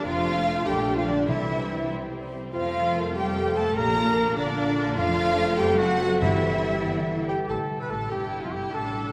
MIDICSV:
0, 0, Header, 1, 12, 480
1, 0, Start_track
1, 0, Key_signature, -1, "major"
1, 0, Tempo, 412939
1, 66, Time_signature, 6, 3, 24, 8
1, 3909, Tempo, 404585
1, 5820, Key_signature, 0, "major"
1, 6789, Tempo, 424628
1, 8709, Tempo, 411523
1, 10613, End_track
2, 0, Start_track
2, 0, Title_t, "Violin section"
2, 0, Program_c, 0, 48
2, 77, Note_on_c, 0, 77, 96
2, 758, Note_off_c, 0, 77, 0
2, 770, Note_on_c, 0, 79, 74
2, 1125, Note_off_c, 0, 79, 0
2, 1139, Note_on_c, 0, 77, 58
2, 1249, Note_off_c, 0, 77, 0
2, 1251, Note_on_c, 0, 74, 66
2, 1489, Note_off_c, 0, 74, 0
2, 1493, Note_on_c, 0, 76, 68
2, 2206, Note_off_c, 0, 76, 0
2, 2957, Note_on_c, 0, 77, 79
2, 3628, Note_off_c, 0, 77, 0
2, 3679, Note_on_c, 0, 79, 67
2, 4155, Note_off_c, 0, 79, 0
2, 4156, Note_on_c, 0, 81, 75
2, 4394, Note_on_c, 0, 82, 102
2, 4395, Note_off_c, 0, 81, 0
2, 5093, Note_off_c, 0, 82, 0
2, 5103, Note_on_c, 0, 74, 86
2, 5805, Note_off_c, 0, 74, 0
2, 5821, Note_on_c, 0, 77, 106
2, 6528, Note_off_c, 0, 77, 0
2, 6537, Note_on_c, 0, 79, 90
2, 6786, Note_off_c, 0, 79, 0
2, 6792, Note_on_c, 0, 78, 93
2, 7260, Note_off_c, 0, 78, 0
2, 7274, Note_on_c, 0, 76, 79
2, 8448, Note_off_c, 0, 76, 0
2, 8481, Note_on_c, 0, 79, 52
2, 8572, Note_off_c, 0, 79, 0
2, 8727, Note_on_c, 0, 81, 47
2, 8820, Note_off_c, 0, 81, 0
2, 9093, Note_on_c, 0, 83, 41
2, 9200, Note_off_c, 0, 83, 0
2, 9211, Note_on_c, 0, 81, 44
2, 9437, Note_off_c, 0, 81, 0
2, 9449, Note_on_c, 0, 79, 44
2, 9801, Note_off_c, 0, 79, 0
2, 9808, Note_on_c, 0, 77, 33
2, 9853, Note_off_c, 0, 77, 0
2, 9926, Note_on_c, 0, 79, 46
2, 10155, Note_off_c, 0, 79, 0
2, 10172, Note_on_c, 0, 81, 55
2, 10613, Note_off_c, 0, 81, 0
2, 10613, End_track
3, 0, Start_track
3, 0, Title_t, "Flute section"
3, 0, Program_c, 1, 73
3, 55, Note_on_c, 1, 77, 70
3, 746, Note_off_c, 1, 77, 0
3, 773, Note_on_c, 1, 79, 66
3, 1120, Note_on_c, 1, 77, 53
3, 1126, Note_off_c, 1, 79, 0
3, 1239, Note_off_c, 1, 77, 0
3, 1246, Note_on_c, 1, 74, 51
3, 1474, Note_on_c, 1, 76, 53
3, 1482, Note_off_c, 1, 74, 0
3, 2211, Note_off_c, 1, 76, 0
3, 2949, Note_on_c, 1, 77, 62
3, 3624, Note_off_c, 1, 77, 0
3, 3660, Note_on_c, 1, 79, 67
3, 4136, Note_off_c, 1, 79, 0
3, 4151, Note_on_c, 1, 81, 64
3, 4390, Note_on_c, 1, 82, 73
3, 4392, Note_off_c, 1, 81, 0
3, 5091, Note_off_c, 1, 82, 0
3, 5111, Note_on_c, 1, 74, 72
3, 5804, Note_on_c, 1, 77, 83
3, 5809, Note_off_c, 1, 74, 0
3, 6520, Note_off_c, 1, 77, 0
3, 6548, Note_on_c, 1, 79, 92
3, 6619, Note_off_c, 1, 79, 0
3, 6786, Note_on_c, 1, 78, 77
3, 7256, Note_off_c, 1, 78, 0
3, 7268, Note_on_c, 1, 76, 71
3, 8446, Note_off_c, 1, 76, 0
3, 10613, End_track
4, 0, Start_track
4, 0, Title_t, "Trumpet"
4, 0, Program_c, 2, 56
4, 8474, Note_on_c, 2, 67, 59
4, 8694, Note_off_c, 2, 67, 0
4, 8714, Note_on_c, 2, 69, 55
4, 9067, Note_off_c, 2, 69, 0
4, 9086, Note_on_c, 2, 71, 47
4, 9192, Note_on_c, 2, 69, 54
4, 9209, Note_off_c, 2, 71, 0
4, 9432, Note_off_c, 2, 69, 0
4, 9438, Note_on_c, 2, 67, 45
4, 9599, Note_off_c, 2, 67, 0
4, 9814, Note_on_c, 2, 65, 45
4, 9912, Note_on_c, 2, 67, 51
4, 9929, Note_off_c, 2, 65, 0
4, 10147, Note_off_c, 2, 67, 0
4, 10154, Note_on_c, 2, 69, 56
4, 10613, Note_off_c, 2, 69, 0
4, 10613, End_track
5, 0, Start_track
5, 0, Title_t, "French horn section"
5, 0, Program_c, 3, 60
5, 60, Note_on_c, 3, 65, 65
5, 749, Note_off_c, 3, 65, 0
5, 764, Note_on_c, 3, 62, 55
5, 1484, Note_off_c, 3, 62, 0
5, 1487, Note_on_c, 3, 64, 51
5, 2560, Note_off_c, 3, 64, 0
5, 2950, Note_on_c, 3, 72, 62
5, 3174, Note_off_c, 3, 72, 0
5, 3192, Note_on_c, 3, 69, 51
5, 3426, Note_off_c, 3, 69, 0
5, 3436, Note_on_c, 3, 70, 58
5, 3667, Note_off_c, 3, 70, 0
5, 3671, Note_on_c, 3, 69, 58
5, 4392, Note_on_c, 3, 67, 66
5, 4393, Note_off_c, 3, 69, 0
5, 4628, Note_on_c, 3, 65, 59
5, 4632, Note_off_c, 3, 67, 0
5, 4860, Note_on_c, 3, 67, 70
5, 4867, Note_off_c, 3, 65, 0
5, 5102, Note_off_c, 3, 67, 0
5, 5104, Note_on_c, 3, 65, 70
5, 5819, Note_off_c, 3, 65, 0
5, 5819, Note_on_c, 3, 69, 84
5, 7238, Note_off_c, 3, 69, 0
5, 7260, Note_on_c, 3, 67, 64
5, 8344, Note_off_c, 3, 67, 0
5, 10613, End_track
6, 0, Start_track
6, 0, Title_t, "Harp"
6, 0, Program_c, 4, 46
6, 0, Note_on_c, 4, 53, 45
6, 0, Note_on_c, 4, 65, 49
6, 0, Note_on_c, 4, 77, 52
6, 60, Note_on_c, 4, 41, 57
6, 176, Note_on_c, 4, 48, 46
6, 299, Note_on_c, 4, 60, 48
6, 398, Note_off_c, 4, 65, 0
6, 412, Note_on_c, 4, 65, 52
6, 534, Note_on_c, 4, 69, 49
6, 653, Note_on_c, 4, 72, 44
6, 767, Note_on_c, 4, 46, 52
6, 782, Note_off_c, 4, 41, 0
6, 782, Note_off_c, 4, 48, 0
6, 786, Note_off_c, 4, 60, 0
6, 787, Note_off_c, 4, 72, 0
6, 875, Note_off_c, 4, 53, 0
6, 889, Note_on_c, 4, 53, 43
6, 1011, Note_on_c, 4, 62, 42
6, 1115, Note_off_c, 4, 65, 0
6, 1129, Note_on_c, 4, 65, 39
6, 1230, Note_off_c, 4, 69, 0
6, 1244, Note_on_c, 4, 69, 50
6, 1366, Note_on_c, 4, 74, 43
6, 1484, Note_on_c, 4, 48, 47
6, 1504, Note_off_c, 4, 77, 0
6, 1505, Note_off_c, 4, 46, 0
6, 1505, Note_off_c, 4, 69, 0
6, 1505, Note_off_c, 4, 74, 0
6, 1507, Note_off_c, 4, 53, 0
6, 1507, Note_off_c, 4, 65, 0
6, 1508, Note_off_c, 4, 62, 0
6, 1607, Note_on_c, 4, 60, 41
6, 1734, Note_on_c, 4, 67, 40
6, 1854, Note_on_c, 4, 72, 43
6, 1957, Note_off_c, 4, 67, 0
6, 1970, Note_on_c, 4, 67, 43
6, 2092, Note_on_c, 4, 79, 40
6, 2220, Note_on_c, 4, 84, 42
6, 2327, Note_off_c, 4, 79, 0
6, 2340, Note_on_c, 4, 79, 41
6, 2447, Note_off_c, 4, 67, 0
6, 2461, Note_on_c, 4, 67, 43
6, 2571, Note_off_c, 4, 72, 0
6, 2585, Note_on_c, 4, 72, 39
6, 2692, Note_off_c, 4, 67, 0
6, 2706, Note_on_c, 4, 67, 45
6, 2825, Note_on_c, 4, 55, 38
6, 2943, Note_on_c, 4, 41, 47
6, 2966, Note_off_c, 4, 48, 0
6, 2966, Note_off_c, 4, 55, 0
6, 2967, Note_off_c, 4, 79, 0
6, 2968, Note_off_c, 4, 67, 0
6, 3069, Note_on_c, 4, 48, 41
6, 3186, Note_on_c, 4, 65, 39
6, 3291, Note_off_c, 4, 72, 0
6, 3305, Note_on_c, 4, 72, 47
6, 3429, Note_on_c, 4, 69, 48
6, 3545, Note_on_c, 4, 77, 43
6, 3647, Note_off_c, 4, 84, 0
6, 3661, Note_on_c, 4, 84, 48
6, 3762, Note_off_c, 4, 77, 0
6, 3776, Note_on_c, 4, 77, 45
6, 3886, Note_off_c, 4, 69, 0
6, 3900, Note_on_c, 4, 69, 47
6, 4008, Note_off_c, 4, 72, 0
6, 4022, Note_on_c, 4, 72, 45
6, 4127, Note_off_c, 4, 65, 0
6, 4141, Note_on_c, 4, 65, 49
6, 4268, Note_on_c, 4, 57, 45
6, 4391, Note_on_c, 4, 46, 53
6, 4407, Note_off_c, 4, 69, 0
6, 4407, Note_off_c, 4, 84, 0
6, 4408, Note_off_c, 4, 72, 0
6, 4409, Note_off_c, 4, 41, 0
6, 4410, Note_off_c, 4, 57, 0
6, 4411, Note_off_c, 4, 60, 0
6, 4412, Note_off_c, 4, 48, 0
6, 4508, Note_on_c, 4, 53, 45
6, 4612, Note_off_c, 4, 65, 0
6, 4626, Note_on_c, 4, 65, 49
6, 4742, Note_on_c, 4, 74, 53
6, 4868, Note_on_c, 4, 70, 53
6, 4967, Note_off_c, 4, 77, 0
6, 4981, Note_on_c, 4, 77, 54
6, 5096, Note_on_c, 4, 86, 56
6, 5201, Note_off_c, 4, 77, 0
6, 5215, Note_on_c, 4, 77, 60
6, 5324, Note_off_c, 4, 70, 0
6, 5338, Note_on_c, 4, 70, 50
6, 5442, Note_off_c, 4, 74, 0
6, 5457, Note_on_c, 4, 74, 53
6, 5559, Note_off_c, 4, 65, 0
6, 5573, Note_on_c, 4, 65, 62
6, 5696, Note_on_c, 4, 58, 54
6, 5816, Note_on_c, 4, 41, 68
6, 5837, Note_off_c, 4, 58, 0
6, 5837, Note_off_c, 4, 70, 0
6, 5839, Note_off_c, 4, 46, 0
6, 5921, Note_off_c, 4, 53, 0
6, 5935, Note_on_c, 4, 53, 55
6, 6041, Note_off_c, 4, 65, 0
6, 6055, Note_on_c, 4, 65, 53
6, 6165, Note_off_c, 4, 74, 0
6, 6179, Note_on_c, 4, 74, 63
6, 6295, Note_on_c, 4, 69, 59
6, 6403, Note_off_c, 4, 77, 0
6, 6417, Note_on_c, 4, 77, 55
6, 6542, Note_on_c, 4, 42, 64
6, 6557, Note_off_c, 4, 86, 0
6, 6559, Note_off_c, 4, 53, 0
6, 6559, Note_off_c, 4, 65, 0
6, 6560, Note_off_c, 4, 41, 0
6, 6560, Note_off_c, 4, 77, 0
6, 6562, Note_off_c, 4, 74, 0
6, 6661, Note_on_c, 4, 54, 51
6, 6785, Note_on_c, 4, 63, 51
6, 6900, Note_on_c, 4, 72, 51
6, 7011, Note_off_c, 4, 69, 0
6, 7024, Note_on_c, 4, 69, 58
6, 7145, Note_on_c, 4, 75, 45
6, 7265, Note_on_c, 4, 43, 54
6, 7285, Note_off_c, 4, 54, 0
6, 7285, Note_off_c, 4, 63, 0
6, 7285, Note_off_c, 4, 69, 0
6, 7285, Note_off_c, 4, 75, 0
6, 7286, Note_off_c, 4, 42, 0
6, 7388, Note_on_c, 4, 52, 42
6, 7506, Note_on_c, 4, 64, 44
6, 7610, Note_off_c, 4, 72, 0
6, 7624, Note_on_c, 4, 72, 49
6, 7746, Note_on_c, 4, 67, 44
6, 7872, Note_on_c, 4, 76, 47
6, 7972, Note_off_c, 4, 43, 0
6, 7986, Note_on_c, 4, 43, 50
6, 8004, Note_off_c, 4, 72, 0
6, 8005, Note_off_c, 4, 64, 0
6, 8006, Note_off_c, 4, 52, 0
6, 8008, Note_off_c, 4, 76, 0
6, 8106, Note_on_c, 4, 50, 43
6, 8230, Note_on_c, 4, 62, 38
6, 8352, Note_on_c, 4, 71, 45
6, 8460, Note_off_c, 4, 67, 0
6, 8474, Note_on_c, 4, 67, 51
6, 8597, Note_on_c, 4, 74, 44
6, 8715, Note_on_c, 4, 48, 38
6, 8727, Note_off_c, 4, 43, 0
6, 8728, Note_off_c, 4, 50, 0
6, 8730, Note_off_c, 4, 62, 0
6, 8730, Note_off_c, 4, 71, 0
6, 8732, Note_off_c, 4, 74, 0
6, 8956, Note_on_c, 4, 55, 30
6, 9183, Note_off_c, 4, 67, 0
6, 9197, Note_on_c, 4, 67, 35
6, 9438, Note_on_c, 4, 64, 33
6, 9677, Note_on_c, 4, 76, 31
6, 9907, Note_off_c, 4, 67, 0
6, 9921, Note_on_c, 4, 67, 35
6, 10159, Note_on_c, 4, 47, 39
6, 10174, Note_off_c, 4, 76, 0
6, 10175, Note_off_c, 4, 48, 0
6, 10175, Note_off_c, 4, 64, 0
6, 10384, Note_off_c, 4, 55, 0
6, 10398, Note_on_c, 4, 55, 31
6, 10613, Note_off_c, 4, 47, 0
6, 10613, Note_off_c, 4, 55, 0
6, 10613, Note_off_c, 4, 67, 0
6, 10613, End_track
7, 0, Start_track
7, 0, Title_t, "Clarinet"
7, 0, Program_c, 5, 71
7, 70, Note_on_c, 5, 65, 64
7, 765, Note_off_c, 5, 65, 0
7, 772, Note_on_c, 5, 67, 66
7, 931, Note_off_c, 5, 67, 0
7, 1126, Note_on_c, 5, 65, 52
7, 1180, Note_off_c, 5, 65, 0
7, 1249, Note_on_c, 5, 62, 50
7, 1492, Note_on_c, 5, 64, 53
7, 1509, Note_off_c, 5, 62, 0
7, 2220, Note_off_c, 5, 64, 0
7, 2947, Note_on_c, 5, 65, 60
7, 3623, Note_off_c, 5, 65, 0
7, 3670, Note_on_c, 5, 67, 67
7, 4141, Note_off_c, 5, 67, 0
7, 4152, Note_on_c, 5, 69, 71
7, 4383, Note_off_c, 5, 69, 0
7, 4390, Note_on_c, 5, 70, 74
7, 5108, Note_on_c, 5, 62, 77
7, 5126, Note_off_c, 5, 70, 0
7, 5822, Note_off_c, 5, 62, 0
7, 5827, Note_on_c, 5, 65, 81
7, 6547, Note_on_c, 5, 67, 94
7, 6565, Note_off_c, 5, 65, 0
7, 6784, Note_on_c, 5, 66, 83
7, 6801, Note_off_c, 5, 67, 0
7, 7265, Note_off_c, 5, 66, 0
7, 7273, Note_on_c, 5, 64, 64
7, 8448, Note_off_c, 5, 64, 0
7, 10613, End_track
8, 0, Start_track
8, 0, Title_t, "Viola section"
8, 0, Program_c, 6, 48
8, 72, Note_on_c, 6, 65, 76
8, 755, Note_off_c, 6, 65, 0
8, 775, Note_on_c, 6, 67, 69
8, 1120, Note_off_c, 6, 67, 0
8, 1127, Note_on_c, 6, 65, 56
8, 1245, Note_off_c, 6, 65, 0
8, 1255, Note_on_c, 6, 62, 55
8, 1486, Note_off_c, 6, 62, 0
8, 1501, Note_on_c, 6, 64, 58
8, 2224, Note_off_c, 6, 64, 0
8, 2949, Note_on_c, 6, 65, 63
8, 3624, Note_off_c, 6, 65, 0
8, 3672, Note_on_c, 6, 67, 64
8, 4152, Note_off_c, 6, 67, 0
8, 4157, Note_on_c, 6, 69, 67
8, 4390, Note_off_c, 6, 69, 0
8, 4390, Note_on_c, 6, 70, 77
8, 5105, Note_off_c, 6, 70, 0
8, 5115, Note_on_c, 6, 62, 68
8, 5811, Note_off_c, 6, 62, 0
8, 5819, Note_on_c, 6, 65, 81
8, 6542, Note_off_c, 6, 65, 0
8, 6553, Note_on_c, 6, 67, 84
8, 6794, Note_off_c, 6, 67, 0
8, 6800, Note_on_c, 6, 66, 78
8, 7264, Note_off_c, 6, 66, 0
8, 7278, Note_on_c, 6, 64, 68
8, 8474, Note_off_c, 6, 64, 0
8, 9443, Note_on_c, 6, 64, 48
8, 10112, Note_off_c, 6, 64, 0
8, 10152, Note_on_c, 6, 62, 46
8, 10613, Note_off_c, 6, 62, 0
8, 10613, End_track
9, 0, Start_track
9, 0, Title_t, "Violin section"
9, 0, Program_c, 7, 48
9, 70, Note_on_c, 7, 57, 62
9, 76, Note_on_c, 7, 60, 55
9, 725, Note_off_c, 7, 60, 0
9, 774, Note_on_c, 7, 62, 54
9, 1440, Note_off_c, 7, 57, 0
9, 1442, Note_off_c, 7, 62, 0
9, 1483, Note_on_c, 7, 55, 48
9, 1484, Note_on_c, 7, 60, 55
9, 2660, Note_off_c, 7, 55, 0
9, 2942, Note_on_c, 7, 57, 57
9, 4342, Note_off_c, 7, 57, 0
9, 4344, Note_off_c, 7, 60, 0
9, 4377, Note_on_c, 7, 58, 62
9, 4384, Note_on_c, 7, 62, 64
9, 5766, Note_off_c, 7, 58, 0
9, 5813, Note_on_c, 7, 57, 74
9, 6491, Note_off_c, 7, 62, 0
9, 6542, Note_on_c, 7, 60, 73
9, 7218, Note_off_c, 7, 57, 0
9, 7274, Note_on_c, 7, 55, 65
9, 7941, Note_off_c, 7, 60, 0
9, 7987, Note_on_c, 7, 59, 54
9, 8432, Note_off_c, 7, 55, 0
9, 8440, Note_off_c, 7, 59, 0
9, 8715, Note_on_c, 7, 69, 44
9, 8808, Note_off_c, 7, 69, 0
9, 9067, Note_on_c, 7, 71, 42
9, 9185, Note_on_c, 7, 69, 46
9, 9187, Note_off_c, 7, 71, 0
9, 9423, Note_on_c, 7, 67, 46
9, 9429, Note_off_c, 7, 69, 0
9, 9786, Note_on_c, 7, 65, 39
9, 9788, Note_off_c, 7, 67, 0
9, 9910, Note_off_c, 7, 65, 0
9, 9913, Note_on_c, 7, 67, 48
9, 10146, Note_on_c, 7, 69, 56
9, 10153, Note_off_c, 7, 67, 0
9, 10613, Note_off_c, 7, 69, 0
9, 10613, End_track
10, 0, Start_track
10, 0, Title_t, "Cello section"
10, 0, Program_c, 8, 48
10, 71, Note_on_c, 8, 53, 69
10, 754, Note_off_c, 8, 53, 0
10, 769, Note_on_c, 8, 55, 65
10, 862, Note_off_c, 8, 55, 0
10, 1128, Note_on_c, 8, 53, 59
10, 1243, Note_off_c, 8, 53, 0
10, 1246, Note_on_c, 8, 50, 53
10, 1486, Note_off_c, 8, 50, 0
10, 1487, Note_on_c, 8, 52, 57
10, 2203, Note_off_c, 8, 52, 0
10, 2945, Note_on_c, 8, 53, 68
10, 3622, Note_off_c, 8, 53, 0
10, 3668, Note_on_c, 8, 55, 67
10, 4140, Note_off_c, 8, 55, 0
10, 4148, Note_on_c, 8, 57, 68
10, 4384, Note_on_c, 8, 58, 77
10, 4391, Note_off_c, 8, 57, 0
10, 5102, Note_off_c, 8, 58, 0
10, 5103, Note_on_c, 8, 50, 78
10, 5805, Note_off_c, 8, 50, 0
10, 5812, Note_on_c, 8, 53, 92
10, 6538, Note_off_c, 8, 53, 0
10, 6543, Note_on_c, 8, 55, 85
10, 6784, Note_off_c, 8, 55, 0
10, 6789, Note_on_c, 8, 54, 71
10, 7261, Note_on_c, 8, 52, 72
10, 7268, Note_off_c, 8, 54, 0
10, 8442, Note_off_c, 8, 52, 0
10, 8714, Note_on_c, 8, 45, 48
10, 8807, Note_off_c, 8, 45, 0
10, 9076, Note_on_c, 8, 47, 44
10, 9192, Note_off_c, 8, 47, 0
10, 9195, Note_on_c, 8, 45, 45
10, 9433, Note_off_c, 8, 45, 0
10, 9438, Note_on_c, 8, 43, 47
10, 9790, Note_on_c, 8, 41, 42
10, 9796, Note_off_c, 8, 43, 0
10, 9912, Note_off_c, 8, 41, 0
10, 9918, Note_on_c, 8, 43, 44
10, 10155, Note_off_c, 8, 43, 0
10, 10158, Note_on_c, 8, 45, 50
10, 10613, Note_off_c, 8, 45, 0
10, 10613, End_track
11, 0, Start_track
11, 0, Title_t, "Timpani"
11, 0, Program_c, 10, 47
11, 1495, Note_on_c, 10, 48, 65
11, 2175, Note_off_c, 10, 48, 0
11, 7275, Note_on_c, 10, 43, 76
11, 7945, Note_off_c, 10, 43, 0
11, 10613, End_track
12, 0, Start_track
12, 0, Title_t, "Double bass section"
12, 0, Program_c, 11, 48
12, 68, Note_on_c, 11, 29, 62
12, 720, Note_off_c, 11, 29, 0
12, 767, Note_on_c, 11, 34, 57
12, 1485, Note_off_c, 11, 34, 0
12, 1492, Note_on_c, 11, 36, 49
12, 2711, Note_off_c, 11, 36, 0
12, 2949, Note_on_c, 11, 41, 53
12, 4346, Note_off_c, 11, 41, 0
12, 4387, Note_on_c, 11, 34, 59
12, 5789, Note_off_c, 11, 34, 0
12, 5817, Note_on_c, 11, 29, 71
12, 6538, Note_on_c, 11, 30, 64
12, 6541, Note_off_c, 11, 29, 0
12, 7265, Note_off_c, 11, 30, 0
12, 7265, Note_on_c, 11, 31, 59
12, 8473, Note_off_c, 11, 31, 0
12, 8711, Note_on_c, 11, 33, 45
12, 8804, Note_off_c, 11, 33, 0
12, 9191, Note_on_c, 11, 33, 48
12, 9429, Note_on_c, 11, 31, 49
12, 9431, Note_off_c, 11, 33, 0
12, 9791, Note_off_c, 11, 31, 0
12, 9913, Note_on_c, 11, 31, 45
12, 10153, Note_off_c, 11, 31, 0
12, 10155, Note_on_c, 11, 33, 45
12, 10613, Note_off_c, 11, 33, 0
12, 10613, End_track
0, 0, End_of_file